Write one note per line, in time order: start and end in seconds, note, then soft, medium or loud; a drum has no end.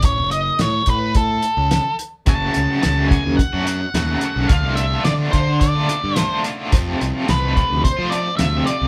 0.02 0.19 A1 loud
0.02 0.30 C#5 medium
0.02 kick loud
0.02 closed hi-hat medium
0.18 0.49 F#1 medium
0.31 0.60 D#5 medium
0.31 closed hi-hat medium
0.59 0.80 A2 medium
0.59 0.89 C#5 medium
0.59 snare loud
0.59 closed hi-hat medium
0.86 1.40 A2 medium
0.86 1.16 B4 medium
0.86 kick medium
0.86 closed hi-hat medium
1.15 1.95 A4 medium
1.15 kick medium
1.15 closed hi-hat medium
1.42 closed hi-hat medium
1.57 1.78 C#2 medium
1.71 snare loud
1.71 closed hi-hat medium
1.99 closed hi-hat medium
2.26 2.48 F#1 medium
2.26 2.81 F#2 medium
2.26 2.81 C#3 medium
2.26 2.68 F#3 medium
2.26 2.68 A3 medium
2.26 2.67 C#4 medium
2.26 2.66 F#4 medium
2.26 2.81 A5 loud
2.26 kick loud
2.26 closed hi-hat medium
2.54 2.66 C#2 medium
2.54 closed hi-hat medium
2.67 2.82 F#3 medium
2.67 2.83 A3 medium
2.67 2.83 C#4 medium
2.67 2.83 F#4 medium
2.82 3.15 C#2 medium
2.82 3.38 F#2 medium
2.82 3.37 C#3 medium
2.82 3.09 F#3 medium
2.82 3.11 A3 medium
2.82 3.10 C#4 medium
2.82 3.11 F#4 medium
2.82 3.08 A5 loud
2.82 snare medium
2.82 closed hi-hat medium
3.08 3.24 F#3 medium
3.08 3.25 A3 medium
3.08 3.24 C#4 medium
3.08 3.23 F#4 medium
3.08 3.37 G#5 loud
3.08 kick medium
3.08 closed hi-hat medium
3.24 3.35 D#2 medium
3.24 muted overdriven electric guitar stroke soft
3.37 4.52 F#5 medium
3.37 kick medium
3.37 closed hi-hat medium
3.53 3.84 F#2 medium
3.53 3.65 F#3 soft
3.53 3.67 A3 medium
3.53 3.67 C#4 medium
3.53 3.67 F#4 medium
3.66 3.80 F#3 medium
3.66 3.81 A3 medium
3.66 3.79 C#4 medium
3.66 3.79 F#4 medium
3.66 closed hi-hat medium
3.80 muted overdriven electric guitar stroke soft
3.94 4.15 D#2 medium
3.94 4.48 F#2 medium
3.94 4.48 C#3 medium
3.94 4.21 F#3 medium
3.94 4.23 A3 medium
3.94 4.23 C#4 medium
3.94 4.24 F#4 loud
3.94 snare loud
3.94 closed hi-hat medium
4.21 4.48 F#3 medium
4.21 4.50 A3 medium
4.21 4.48 C#4 medium
4.21 closed hi-hat medium
4.25 4.49 F#4 medium
4.36 4.46 B1 medium
4.48 4.64 D2 loud
4.48 5.02 D3 medium
4.48 4.93 A3 medium
4.48 4.92 D4 medium
4.48 4.75 F5 medium
4.48 kick loud
4.48 closed hi-hat medium
4.52 4.91 F4 medium
4.64 4.95 C2 medium
4.76 5.04 E5 medium
4.76 closed hi-hat medium
4.92 5.05 A3 medium
4.92 5.04 D4 medium
4.92 5.05 F4 medium
5.04 5.32 D3 medium
5.04 5.25 D3 medium
5.04 5.33 A3 medium
5.04 5.32 D4 loud
5.04 5.34 F4 loud
5.04 5.12 D5 medium
5.04 snare loud
5.04 closed hi-hat medium
5.31 5.74 D3 medium
5.31 5.86 D3 medium
5.31 5.47 A3 medium
5.31 5.46 D4 medium
5.31 5.46 F4 medium
5.31 5.60 C5 medium
5.31 kick medium
5.31 closed hi-hat medium
5.47 muted overdriven electric guitar stroke soft
5.60 6.18 D5 medium
5.60 kick medium
5.60 closed hi-hat medium
5.75 5.88 A3 soft
5.75 5.88 D4 medium
5.75 5.88 F4 medium
5.88 6.15 D3 medium
5.88 6.02 A3 medium
5.88 6.00 D4 medium
5.88 6.00 F4 medium
5.88 closed hi-hat medium
6.01 6.24 G2 medium
6.01 muted overdriven electric guitar stroke soft
6.16 6.44 D3 medium
6.16 6.45 A3 medium
6.16 6.45 D4 loud
6.16 6.46 F4 medium
6.16 6.39 C5 medium
6.16 snare loud
6.16 closed hi-hat medium
6.44 6.71 D3 medium
6.44 6.72 A3 medium
6.44 6.71 D4 medium
6.44 6.71 F4 medium
6.44 closed hi-hat medium
6.71 7.25 F2 medium
6.71 6.94 F2 loud
6.71 7.26 C3 medium
6.71 7.14 F3 medium
6.71 7.15 A3 loud
6.71 7.14 C4 medium
6.71 7.13 F4 loud
6.71 kick loud
6.71 closed hi-hat medium
7.01 7.11 C2 medium
7.01 closed hi-hat medium
7.14 7.27 F3 medium
7.14 7.27 A3 medium
7.14 7.27 C4 medium
7.14 7.27 F4 medium
7.27 7.60 C2 medium
7.27 7.82 F2 medium
7.27 7.83 C3 medium
7.27 7.55 F3 medium
7.27 7.56 A3 loud
7.27 7.56 C4 medium
7.27 7.57 F4 loud
7.27 7.84 B4 medium
7.27 snare loud
7.27 closed hi-hat medium
7.56 7.70 F3 medium
7.56 7.70 A3 medium
7.56 7.70 C4 medium
7.56 7.69 F4 medium
7.56 kick medium
7.56 closed hi-hat soft
7.70 7.82 D2 medium
7.70 muted overdriven electric guitar stroke soft
7.84 8.12 C5 medium
7.84 kick medium
7.84 closed hi-hat medium
7.97 8.30 F3 medium
7.97 8.11 F3 medium
7.97 8.12 A3 medium
7.97 8.12 C4 medium
7.97 8.13 F4 medium
8.10 8.27 F3 medium
8.10 8.28 A3 medium
8.10 8.27 C4 medium
8.10 8.36 D5 medium
8.10 closed hi-hat medium
8.15 8.26 F4 medium
8.28 muted overdriven electric guitar stroke soft
8.37 8.60 D2 medium
8.37 8.88 F2 medium
8.37 8.88 C3 medium
8.37 8.66 E5 loud
8.37 snare loud
8.37 closed hi-hat medium
8.41 8.68 F3 medium
8.41 8.70 A3 medium
8.41 8.70 C4 loud
8.41 8.70 F4 medium
8.66 8.88 F3 medium
8.66 8.88 D5 medium
8.66 closed hi-hat medium
8.70 8.88 A3 medium
8.70 8.88 C4 medium
8.70 8.88 F4 medium
8.81 8.88 C2 medium